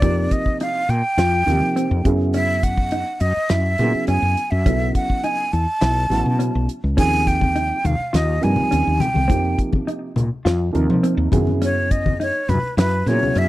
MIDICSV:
0, 0, Header, 1, 7, 480
1, 0, Start_track
1, 0, Tempo, 579710
1, 22, Time_signature, 4, 2, 24, 8
1, 11166, End_track
2, 0, Start_track
2, 0, Title_t, "Flute"
2, 0, Program_c, 0, 73
2, 0, Note_on_c, 0, 74, 83
2, 267, Note_on_c, 0, 75, 84
2, 280, Note_off_c, 0, 74, 0
2, 502, Note_off_c, 0, 75, 0
2, 507, Note_on_c, 0, 77, 83
2, 743, Note_on_c, 0, 79, 96
2, 756, Note_off_c, 0, 77, 0
2, 1702, Note_off_c, 0, 79, 0
2, 1940, Note_on_c, 0, 76, 82
2, 2181, Note_on_c, 0, 78, 81
2, 2194, Note_off_c, 0, 76, 0
2, 2654, Note_on_c, 0, 75, 78
2, 2667, Note_off_c, 0, 78, 0
2, 2904, Note_on_c, 0, 76, 84
2, 2916, Note_off_c, 0, 75, 0
2, 3375, Note_off_c, 0, 76, 0
2, 3380, Note_on_c, 0, 80, 91
2, 3731, Note_on_c, 0, 76, 83
2, 3744, Note_off_c, 0, 80, 0
2, 4095, Note_off_c, 0, 76, 0
2, 4100, Note_on_c, 0, 78, 84
2, 4337, Note_on_c, 0, 80, 86
2, 4349, Note_off_c, 0, 78, 0
2, 4572, Note_on_c, 0, 81, 95
2, 4585, Note_off_c, 0, 80, 0
2, 5535, Note_off_c, 0, 81, 0
2, 5785, Note_on_c, 0, 80, 99
2, 6022, Note_on_c, 0, 79, 92
2, 6034, Note_off_c, 0, 80, 0
2, 6506, Note_on_c, 0, 77, 81
2, 6519, Note_off_c, 0, 79, 0
2, 6749, Note_on_c, 0, 75, 78
2, 6761, Note_off_c, 0, 77, 0
2, 6981, Note_on_c, 0, 80, 86
2, 6994, Note_off_c, 0, 75, 0
2, 7455, Note_on_c, 0, 79, 82
2, 7468, Note_off_c, 0, 80, 0
2, 7937, Note_off_c, 0, 79, 0
2, 9639, Note_on_c, 0, 73, 82
2, 9863, Note_on_c, 0, 75, 81
2, 9875, Note_off_c, 0, 73, 0
2, 10102, Note_off_c, 0, 75, 0
2, 10118, Note_on_c, 0, 73, 84
2, 10341, Note_on_c, 0, 71, 79
2, 10354, Note_off_c, 0, 73, 0
2, 10576, Note_off_c, 0, 71, 0
2, 10581, Note_on_c, 0, 71, 87
2, 10828, Note_on_c, 0, 73, 87
2, 10841, Note_off_c, 0, 71, 0
2, 11079, Note_on_c, 0, 76, 100
2, 11092, Note_off_c, 0, 73, 0
2, 11166, Note_off_c, 0, 76, 0
2, 11166, End_track
3, 0, Start_track
3, 0, Title_t, "Clean electric guitar"
3, 0, Program_c, 1, 27
3, 18, Note_on_c, 1, 60, 78
3, 204, Note_off_c, 1, 60, 0
3, 505, Note_on_c, 1, 63, 70
3, 688, Note_off_c, 1, 63, 0
3, 977, Note_on_c, 1, 65, 78
3, 1163, Note_off_c, 1, 65, 0
3, 1458, Note_on_c, 1, 60, 74
3, 1644, Note_off_c, 1, 60, 0
3, 1940, Note_on_c, 1, 61, 81
3, 2125, Note_off_c, 1, 61, 0
3, 2418, Note_on_c, 1, 63, 67
3, 2603, Note_off_c, 1, 63, 0
3, 2896, Note_on_c, 1, 64, 72
3, 3082, Note_off_c, 1, 64, 0
3, 3379, Note_on_c, 1, 61, 75
3, 3564, Note_off_c, 1, 61, 0
3, 3858, Note_on_c, 1, 61, 79
3, 4043, Note_off_c, 1, 61, 0
3, 4338, Note_on_c, 1, 63, 67
3, 4523, Note_off_c, 1, 63, 0
3, 4813, Note_on_c, 1, 64, 72
3, 5000, Note_off_c, 1, 64, 0
3, 5291, Note_on_c, 1, 61, 71
3, 5478, Note_off_c, 1, 61, 0
3, 5772, Note_on_c, 1, 61, 80
3, 5959, Note_off_c, 1, 61, 0
3, 6256, Note_on_c, 1, 63, 70
3, 6441, Note_off_c, 1, 63, 0
3, 6732, Note_on_c, 1, 65, 74
3, 6919, Note_off_c, 1, 65, 0
3, 7213, Note_on_c, 1, 61, 72
3, 7399, Note_off_c, 1, 61, 0
3, 7683, Note_on_c, 1, 60, 84
3, 7873, Note_off_c, 1, 60, 0
3, 8175, Note_on_c, 1, 63, 68
3, 8361, Note_off_c, 1, 63, 0
3, 8653, Note_on_c, 1, 65, 70
3, 8840, Note_off_c, 1, 65, 0
3, 9136, Note_on_c, 1, 60, 75
3, 9322, Note_off_c, 1, 60, 0
3, 9619, Note_on_c, 1, 61, 76
3, 9804, Note_off_c, 1, 61, 0
3, 10101, Note_on_c, 1, 63, 65
3, 10286, Note_off_c, 1, 63, 0
3, 10582, Note_on_c, 1, 64, 76
3, 10767, Note_off_c, 1, 64, 0
3, 11066, Note_on_c, 1, 61, 75
3, 11166, Note_off_c, 1, 61, 0
3, 11166, End_track
4, 0, Start_track
4, 0, Title_t, "Grand piano"
4, 0, Program_c, 2, 0
4, 6, Note_on_c, 2, 48, 59
4, 9, Note_on_c, 2, 53, 57
4, 13, Note_on_c, 2, 63, 55
4, 15, Note_on_c, 2, 58, 58
4, 20, Note_on_c, 2, 67, 67
4, 638, Note_off_c, 2, 48, 0
4, 639, Note_off_c, 2, 53, 0
4, 641, Note_off_c, 2, 63, 0
4, 642, Note_off_c, 2, 58, 0
4, 645, Note_off_c, 2, 67, 0
4, 1208, Note_on_c, 2, 48, 63
4, 1212, Note_on_c, 2, 53, 58
4, 1216, Note_on_c, 2, 58, 57
4, 1218, Note_on_c, 2, 63, 57
4, 1227, Note_on_c, 2, 67, 68
4, 1682, Note_off_c, 2, 48, 0
4, 1684, Note_off_c, 2, 53, 0
4, 1686, Note_off_c, 2, 58, 0
4, 1687, Note_off_c, 2, 63, 0
4, 1692, Note_off_c, 2, 67, 0
4, 1692, Note_on_c, 2, 49, 82
4, 1693, Note_on_c, 2, 54, 73
4, 1697, Note_on_c, 2, 59, 75
4, 1701, Note_on_c, 2, 64, 73
4, 1707, Note_on_c, 2, 68, 87
4, 2464, Note_off_c, 2, 49, 0
4, 2465, Note_off_c, 2, 54, 0
4, 2467, Note_off_c, 2, 59, 0
4, 2469, Note_off_c, 2, 64, 0
4, 2472, Note_off_c, 2, 68, 0
4, 3137, Note_on_c, 2, 49, 64
4, 3141, Note_on_c, 2, 54, 58
4, 3147, Note_on_c, 2, 59, 57
4, 3150, Note_on_c, 2, 64, 55
4, 3154, Note_on_c, 2, 68, 71
4, 3605, Note_off_c, 2, 49, 0
4, 3608, Note_off_c, 2, 54, 0
4, 3611, Note_off_c, 2, 59, 0
4, 3612, Note_off_c, 2, 64, 0
4, 3614, Note_off_c, 2, 68, 0
4, 3852, Note_on_c, 2, 49, 62
4, 3855, Note_on_c, 2, 54, 59
4, 3864, Note_on_c, 2, 59, 59
4, 3867, Note_on_c, 2, 64, 55
4, 3870, Note_on_c, 2, 69, 66
4, 4478, Note_off_c, 2, 49, 0
4, 4480, Note_off_c, 2, 54, 0
4, 4484, Note_off_c, 2, 59, 0
4, 4486, Note_off_c, 2, 64, 0
4, 4488, Note_off_c, 2, 69, 0
4, 5043, Note_on_c, 2, 49, 61
4, 5049, Note_on_c, 2, 54, 58
4, 5050, Note_on_c, 2, 59, 56
4, 5058, Note_on_c, 2, 64, 58
4, 5060, Note_on_c, 2, 66, 67
4, 5518, Note_off_c, 2, 49, 0
4, 5521, Note_off_c, 2, 54, 0
4, 5521, Note_off_c, 2, 59, 0
4, 5525, Note_off_c, 2, 64, 0
4, 5526, Note_off_c, 2, 66, 0
4, 5767, Note_on_c, 2, 48, 63
4, 5768, Note_on_c, 2, 53, 53
4, 5769, Note_on_c, 2, 58, 60
4, 5771, Note_on_c, 2, 63, 55
4, 5776, Note_on_c, 2, 68, 70
4, 6396, Note_off_c, 2, 48, 0
4, 6396, Note_off_c, 2, 53, 0
4, 6397, Note_off_c, 2, 58, 0
4, 6398, Note_off_c, 2, 63, 0
4, 6400, Note_off_c, 2, 68, 0
4, 6961, Note_on_c, 2, 48, 65
4, 6969, Note_on_c, 2, 53, 60
4, 6969, Note_on_c, 2, 58, 57
4, 6979, Note_on_c, 2, 63, 61
4, 6980, Note_on_c, 2, 55, 72
4, 7437, Note_off_c, 2, 48, 0
4, 7441, Note_off_c, 2, 53, 0
4, 7441, Note_off_c, 2, 58, 0
4, 7446, Note_off_c, 2, 63, 0
4, 7447, Note_off_c, 2, 55, 0
4, 7687, Note_on_c, 2, 48, 59
4, 7689, Note_on_c, 2, 53, 59
4, 7695, Note_on_c, 2, 58, 56
4, 7697, Note_on_c, 2, 63, 60
4, 7704, Note_on_c, 2, 67, 68
4, 8317, Note_off_c, 2, 48, 0
4, 8318, Note_off_c, 2, 53, 0
4, 8321, Note_off_c, 2, 58, 0
4, 8322, Note_off_c, 2, 63, 0
4, 8325, Note_off_c, 2, 67, 0
4, 8880, Note_on_c, 2, 48, 75
4, 8882, Note_on_c, 2, 53, 75
4, 8883, Note_on_c, 2, 58, 70
4, 8892, Note_on_c, 2, 63, 71
4, 8898, Note_on_c, 2, 70, 84
4, 9358, Note_off_c, 2, 48, 0
4, 9359, Note_off_c, 2, 53, 0
4, 9360, Note_off_c, 2, 58, 0
4, 9364, Note_off_c, 2, 63, 0
4, 9367, Note_off_c, 2, 70, 0
4, 9367, Note_on_c, 2, 49, 83
4, 9375, Note_on_c, 2, 54, 71
4, 9378, Note_on_c, 2, 59, 74
4, 9380, Note_on_c, 2, 64, 68
4, 9382, Note_on_c, 2, 68, 90
4, 10143, Note_off_c, 2, 49, 0
4, 10147, Note_off_c, 2, 54, 0
4, 10149, Note_off_c, 2, 59, 0
4, 10150, Note_off_c, 2, 64, 0
4, 10151, Note_off_c, 2, 68, 0
4, 10816, Note_on_c, 2, 49, 65
4, 10823, Note_on_c, 2, 54, 60
4, 10827, Note_on_c, 2, 59, 59
4, 10831, Note_on_c, 2, 64, 58
4, 10836, Note_on_c, 2, 68, 69
4, 11166, Note_off_c, 2, 49, 0
4, 11166, Note_off_c, 2, 54, 0
4, 11166, Note_off_c, 2, 59, 0
4, 11166, Note_off_c, 2, 64, 0
4, 11166, Note_off_c, 2, 68, 0
4, 11166, End_track
5, 0, Start_track
5, 0, Title_t, "Fretless electric bass"
5, 0, Program_c, 3, 35
5, 20, Note_on_c, 3, 41, 78
5, 223, Note_off_c, 3, 41, 0
5, 735, Note_on_c, 3, 46, 81
5, 839, Note_off_c, 3, 46, 0
5, 972, Note_on_c, 3, 41, 83
5, 1178, Note_off_c, 3, 41, 0
5, 1216, Note_on_c, 3, 39, 84
5, 1320, Note_off_c, 3, 39, 0
5, 1336, Note_on_c, 3, 53, 69
5, 1540, Note_off_c, 3, 53, 0
5, 1581, Note_on_c, 3, 41, 88
5, 1682, Note_off_c, 3, 41, 0
5, 1700, Note_on_c, 3, 42, 82
5, 2506, Note_off_c, 3, 42, 0
5, 2655, Note_on_c, 3, 42, 77
5, 2759, Note_off_c, 3, 42, 0
5, 2899, Note_on_c, 3, 42, 81
5, 3101, Note_off_c, 3, 42, 0
5, 3139, Note_on_c, 3, 46, 86
5, 3241, Note_off_c, 3, 46, 0
5, 3377, Note_on_c, 3, 42, 80
5, 3479, Note_off_c, 3, 42, 0
5, 3497, Note_on_c, 3, 42, 72
5, 3599, Note_off_c, 3, 42, 0
5, 3740, Note_on_c, 3, 42, 81
5, 3841, Note_off_c, 3, 42, 0
5, 3856, Note_on_c, 3, 35, 80
5, 4059, Note_off_c, 3, 35, 0
5, 4580, Note_on_c, 3, 40, 73
5, 4681, Note_off_c, 3, 40, 0
5, 4819, Note_on_c, 3, 35, 85
5, 5020, Note_off_c, 3, 35, 0
5, 5050, Note_on_c, 3, 33, 74
5, 5154, Note_off_c, 3, 33, 0
5, 5182, Note_on_c, 3, 47, 72
5, 5382, Note_off_c, 3, 47, 0
5, 5425, Note_on_c, 3, 35, 85
5, 5523, Note_off_c, 3, 35, 0
5, 5661, Note_on_c, 3, 37, 74
5, 5760, Note_off_c, 3, 37, 0
5, 5780, Note_on_c, 3, 39, 75
5, 6383, Note_off_c, 3, 39, 0
5, 6498, Note_on_c, 3, 39, 77
5, 6599, Note_off_c, 3, 39, 0
5, 6738, Note_on_c, 3, 39, 81
5, 6939, Note_off_c, 3, 39, 0
5, 6991, Note_on_c, 3, 43, 82
5, 7087, Note_off_c, 3, 43, 0
5, 7225, Note_on_c, 3, 39, 84
5, 7323, Note_off_c, 3, 39, 0
5, 7347, Note_on_c, 3, 39, 71
5, 7444, Note_off_c, 3, 39, 0
5, 7581, Note_on_c, 3, 36, 78
5, 7681, Note_off_c, 3, 36, 0
5, 7699, Note_on_c, 3, 41, 78
5, 7900, Note_off_c, 3, 41, 0
5, 8414, Note_on_c, 3, 46, 74
5, 8517, Note_off_c, 3, 46, 0
5, 8655, Note_on_c, 3, 41, 83
5, 8859, Note_off_c, 3, 41, 0
5, 8900, Note_on_c, 3, 39, 79
5, 9001, Note_off_c, 3, 39, 0
5, 9027, Note_on_c, 3, 53, 73
5, 9226, Note_off_c, 3, 53, 0
5, 9252, Note_on_c, 3, 39, 85
5, 9356, Note_off_c, 3, 39, 0
5, 9377, Note_on_c, 3, 42, 90
5, 10186, Note_off_c, 3, 42, 0
5, 10339, Note_on_c, 3, 42, 84
5, 10442, Note_off_c, 3, 42, 0
5, 10575, Note_on_c, 3, 42, 83
5, 10780, Note_off_c, 3, 42, 0
5, 10816, Note_on_c, 3, 46, 88
5, 10921, Note_off_c, 3, 46, 0
5, 11059, Note_on_c, 3, 42, 85
5, 11163, Note_off_c, 3, 42, 0
5, 11166, End_track
6, 0, Start_track
6, 0, Title_t, "Muted fretless electric bass strokes"
6, 2789, Note_on_c, 9, 29, 33
6, 2872, Note_off_c, 9, 29, 0
6, 3266, Note_on_c, 9, 29, 32
6, 3349, Note_off_c, 9, 29, 0
6, 6621, Note_on_c, 9, 29, 35
6, 6703, Note_off_c, 9, 29, 0
6, 7112, Note_on_c, 9, 29, 32
6, 7194, Note_off_c, 9, 29, 0
6, 10457, Note_on_c, 9, 29, 33
6, 10539, Note_off_c, 9, 29, 0
6, 10941, Note_on_c, 9, 29, 31
6, 11024, Note_off_c, 9, 29, 0
6, 11166, End_track
7, 0, Start_track
7, 0, Title_t, "Drums"
7, 17, Note_on_c, 9, 42, 75
7, 19, Note_on_c, 9, 36, 100
7, 100, Note_off_c, 9, 42, 0
7, 102, Note_off_c, 9, 36, 0
7, 257, Note_on_c, 9, 42, 55
7, 259, Note_on_c, 9, 36, 73
7, 340, Note_off_c, 9, 42, 0
7, 342, Note_off_c, 9, 36, 0
7, 380, Note_on_c, 9, 36, 69
7, 462, Note_off_c, 9, 36, 0
7, 498, Note_on_c, 9, 42, 71
7, 581, Note_off_c, 9, 42, 0
7, 746, Note_on_c, 9, 42, 56
7, 829, Note_off_c, 9, 42, 0
7, 977, Note_on_c, 9, 42, 75
7, 984, Note_on_c, 9, 38, 94
7, 1060, Note_off_c, 9, 42, 0
7, 1067, Note_off_c, 9, 38, 0
7, 1224, Note_on_c, 9, 42, 63
7, 1231, Note_on_c, 9, 38, 30
7, 1307, Note_off_c, 9, 42, 0
7, 1313, Note_off_c, 9, 38, 0
7, 1462, Note_on_c, 9, 42, 73
7, 1545, Note_off_c, 9, 42, 0
7, 1699, Note_on_c, 9, 36, 91
7, 1699, Note_on_c, 9, 42, 53
7, 1781, Note_off_c, 9, 36, 0
7, 1782, Note_off_c, 9, 42, 0
7, 1936, Note_on_c, 9, 42, 78
7, 2018, Note_off_c, 9, 42, 0
7, 2179, Note_on_c, 9, 36, 75
7, 2180, Note_on_c, 9, 42, 55
7, 2262, Note_off_c, 9, 36, 0
7, 2263, Note_off_c, 9, 42, 0
7, 2297, Note_on_c, 9, 36, 74
7, 2380, Note_off_c, 9, 36, 0
7, 2409, Note_on_c, 9, 42, 72
7, 2491, Note_off_c, 9, 42, 0
7, 2652, Note_on_c, 9, 42, 57
7, 2735, Note_off_c, 9, 42, 0
7, 2890, Note_on_c, 9, 42, 69
7, 2897, Note_on_c, 9, 38, 96
7, 2973, Note_off_c, 9, 42, 0
7, 2980, Note_off_c, 9, 38, 0
7, 3130, Note_on_c, 9, 42, 55
7, 3136, Note_on_c, 9, 38, 30
7, 3212, Note_off_c, 9, 42, 0
7, 3219, Note_off_c, 9, 38, 0
7, 3370, Note_on_c, 9, 42, 61
7, 3453, Note_off_c, 9, 42, 0
7, 3620, Note_on_c, 9, 42, 48
7, 3703, Note_off_c, 9, 42, 0
7, 3859, Note_on_c, 9, 36, 101
7, 3861, Note_on_c, 9, 42, 77
7, 3942, Note_off_c, 9, 36, 0
7, 3944, Note_off_c, 9, 42, 0
7, 4099, Note_on_c, 9, 36, 76
7, 4099, Note_on_c, 9, 42, 56
7, 4181, Note_off_c, 9, 36, 0
7, 4182, Note_off_c, 9, 42, 0
7, 4221, Note_on_c, 9, 36, 71
7, 4304, Note_off_c, 9, 36, 0
7, 4340, Note_on_c, 9, 42, 66
7, 4423, Note_off_c, 9, 42, 0
7, 4578, Note_on_c, 9, 42, 54
7, 4661, Note_off_c, 9, 42, 0
7, 4814, Note_on_c, 9, 42, 78
7, 4821, Note_on_c, 9, 38, 95
7, 4897, Note_off_c, 9, 42, 0
7, 4904, Note_off_c, 9, 38, 0
7, 5063, Note_on_c, 9, 42, 61
7, 5069, Note_on_c, 9, 38, 28
7, 5145, Note_off_c, 9, 42, 0
7, 5152, Note_off_c, 9, 38, 0
7, 5298, Note_on_c, 9, 42, 73
7, 5380, Note_off_c, 9, 42, 0
7, 5539, Note_on_c, 9, 42, 54
7, 5622, Note_off_c, 9, 42, 0
7, 5778, Note_on_c, 9, 42, 79
7, 5779, Note_on_c, 9, 36, 100
7, 5861, Note_off_c, 9, 36, 0
7, 5861, Note_off_c, 9, 42, 0
7, 6019, Note_on_c, 9, 36, 69
7, 6027, Note_on_c, 9, 42, 54
7, 6101, Note_off_c, 9, 36, 0
7, 6110, Note_off_c, 9, 42, 0
7, 6137, Note_on_c, 9, 63, 68
7, 6138, Note_on_c, 9, 36, 72
7, 6220, Note_off_c, 9, 63, 0
7, 6221, Note_off_c, 9, 36, 0
7, 6257, Note_on_c, 9, 42, 71
7, 6340, Note_off_c, 9, 42, 0
7, 6495, Note_on_c, 9, 64, 68
7, 6498, Note_on_c, 9, 42, 54
7, 6578, Note_off_c, 9, 64, 0
7, 6581, Note_off_c, 9, 42, 0
7, 6740, Note_on_c, 9, 42, 74
7, 6746, Note_on_c, 9, 38, 92
7, 6823, Note_off_c, 9, 42, 0
7, 6829, Note_off_c, 9, 38, 0
7, 6979, Note_on_c, 9, 42, 55
7, 7062, Note_off_c, 9, 42, 0
7, 7089, Note_on_c, 9, 64, 67
7, 7171, Note_off_c, 9, 64, 0
7, 7219, Note_on_c, 9, 42, 70
7, 7302, Note_off_c, 9, 42, 0
7, 7452, Note_on_c, 9, 63, 65
7, 7452, Note_on_c, 9, 64, 65
7, 7463, Note_on_c, 9, 42, 51
7, 7535, Note_off_c, 9, 63, 0
7, 7535, Note_off_c, 9, 64, 0
7, 7546, Note_off_c, 9, 42, 0
7, 7570, Note_on_c, 9, 63, 69
7, 7653, Note_off_c, 9, 63, 0
7, 7698, Note_on_c, 9, 36, 107
7, 7702, Note_on_c, 9, 42, 73
7, 7781, Note_off_c, 9, 36, 0
7, 7785, Note_off_c, 9, 42, 0
7, 7936, Note_on_c, 9, 36, 76
7, 7938, Note_on_c, 9, 42, 54
7, 8019, Note_off_c, 9, 36, 0
7, 8021, Note_off_c, 9, 42, 0
7, 8053, Note_on_c, 9, 63, 65
7, 8058, Note_on_c, 9, 36, 70
7, 8136, Note_off_c, 9, 63, 0
7, 8141, Note_off_c, 9, 36, 0
7, 8183, Note_on_c, 9, 42, 66
7, 8266, Note_off_c, 9, 42, 0
7, 8412, Note_on_c, 9, 64, 74
7, 8426, Note_on_c, 9, 42, 52
7, 8495, Note_off_c, 9, 64, 0
7, 8509, Note_off_c, 9, 42, 0
7, 8662, Note_on_c, 9, 42, 74
7, 8668, Note_on_c, 9, 38, 98
7, 8744, Note_off_c, 9, 42, 0
7, 8751, Note_off_c, 9, 38, 0
7, 8900, Note_on_c, 9, 42, 58
7, 8982, Note_off_c, 9, 42, 0
7, 9024, Note_on_c, 9, 64, 66
7, 9107, Note_off_c, 9, 64, 0
7, 9140, Note_on_c, 9, 42, 70
7, 9222, Note_off_c, 9, 42, 0
7, 9372, Note_on_c, 9, 63, 73
7, 9372, Note_on_c, 9, 64, 73
7, 9379, Note_on_c, 9, 36, 86
7, 9379, Note_on_c, 9, 42, 57
7, 9455, Note_off_c, 9, 63, 0
7, 9455, Note_off_c, 9, 64, 0
7, 9462, Note_off_c, 9, 36, 0
7, 9462, Note_off_c, 9, 42, 0
7, 9497, Note_on_c, 9, 63, 71
7, 9580, Note_off_c, 9, 63, 0
7, 9619, Note_on_c, 9, 42, 79
7, 9702, Note_off_c, 9, 42, 0
7, 9862, Note_on_c, 9, 36, 78
7, 9862, Note_on_c, 9, 42, 59
7, 9945, Note_off_c, 9, 36, 0
7, 9945, Note_off_c, 9, 42, 0
7, 9984, Note_on_c, 9, 36, 68
7, 9986, Note_on_c, 9, 63, 70
7, 10067, Note_off_c, 9, 36, 0
7, 10069, Note_off_c, 9, 63, 0
7, 10110, Note_on_c, 9, 42, 74
7, 10193, Note_off_c, 9, 42, 0
7, 10346, Note_on_c, 9, 42, 59
7, 10349, Note_on_c, 9, 64, 74
7, 10429, Note_off_c, 9, 42, 0
7, 10432, Note_off_c, 9, 64, 0
7, 10582, Note_on_c, 9, 42, 82
7, 10589, Note_on_c, 9, 38, 104
7, 10665, Note_off_c, 9, 42, 0
7, 10671, Note_off_c, 9, 38, 0
7, 10823, Note_on_c, 9, 42, 58
7, 10830, Note_on_c, 9, 38, 31
7, 10906, Note_off_c, 9, 42, 0
7, 10913, Note_off_c, 9, 38, 0
7, 10953, Note_on_c, 9, 64, 65
7, 11036, Note_off_c, 9, 64, 0
7, 11058, Note_on_c, 9, 42, 66
7, 11140, Note_off_c, 9, 42, 0
7, 11166, End_track
0, 0, End_of_file